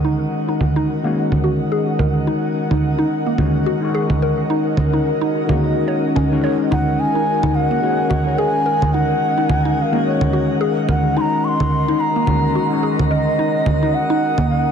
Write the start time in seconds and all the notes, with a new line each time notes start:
Already playing: D#3 G#3 C#4 F#4 A#4 D#5 F#5
0.05 D#4
0.49 D#4
0.61 low conga
0.76 D#4
1.03 D#3 G#3 A#3 C#4 F#4
1.32 low conga
1.44 F#4
1.72 G#4
1.99 A#4, low conga
2.27 D#4
2.71 D#4, low conga
2.99 D#4
3.27 A#3
3.37 D#3 G#3 C#4 F#4, low conga
3.66 F#4
3.80 D#3 G#3 C#4
3.85 F#4
3.95 G#4
4.10 low conga
4.22 A#4
4.50 D#4
4.77 low conga
4.93 D#4
5.21 D#4
5.47 D#3 G#3 A#3 C#4, low conga
5.51 F#4
5.88 C#5
6.16 C#4, low conga
6.31 D#3 G#3 C#4 F#4
6.42 D#3 G#3 C#4 F#4 C#5
6.71 D#4 F#5, low conga
7.00 G#5
7.15 D#4
7.43 D#4, low conga
7.55 F#5
7.71 A#3
7.81 D#3 G#3 C#4 F#4
8.10 F#4, low conga
8.24 D#3 G#3 C#4 F#4
8.38 G#4 G#5
8.66 A#4
8.82 low conga
8.94 D#4 F#5
9.38 D#4
9.50 low conga
9.65 D#4
9.78 F#5
9.82 F5
9.91 D#3 G#3 A#3 C#4
9.95 F#4
10.07 C#5
10.21 low conga
10.33 F#4
10.61 G#4
10.89 A#4 F#5, low conga
11.17 D#4 C6
11.21 A#5
11.45 C6 C#6
11.60 D#4, low conga
11.88 D#4
12.00 A#5
12.16 A#3
12.26 D#3 G#3 C#4 F#4, low conga
12.55 F#4
12.69 D#3 G#3 C#4 F#4
12.83 G#4
12.99 low conga
13.10 A#4 D#5
13.39 D#4
13.66 low conga
13.83 D#4
13.94 F#5
14.10 D#4
14.38 A#3, low conga
14.50 F#5